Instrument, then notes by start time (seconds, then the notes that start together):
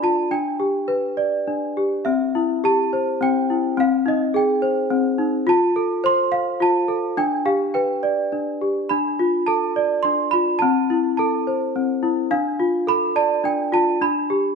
celesta
Already playing: D4 A4 D5
0.03 F4 A5
0.31 D4 G5
0.60 G4
0.88 B4
1.17 D5
1.47 D4
1.77 G4
2.05 C4 E5
2.35 E4
2.64 G4 A5
2.93 C5
3.21 C4 G5
3.50 E4
3.77 C4 F5
4.06 D#4 D#5
4.34 G#4 G5
4.62 C5
4.90 C4
5.18 D#4
5.47 F4 A5
5.76 A4
6.04 C5 C6
6.32 F5
6.60 F4 A5
6.88 A4
7.17 D4 G5
7.46 G4 F5
7.74 B4 G5
8.03 D5
8.32 D4
8.61 G4
8.89 D4 B5
9.19 F4
9.46 A4 A5
9.76 D5
10.03 D4 C6
10.31 F4 B5
10.59 C4 A5
10.90 E4
11.17 A4 A5
11.47 C5
11.76 C4
12.03 E4
12.31 D4 F5
12.60 F4
12.87 A4 B5
13.16 D5 A5
13.44 D4 G5
13.72 F4 A5
14.02 D4 B5
14.30 G4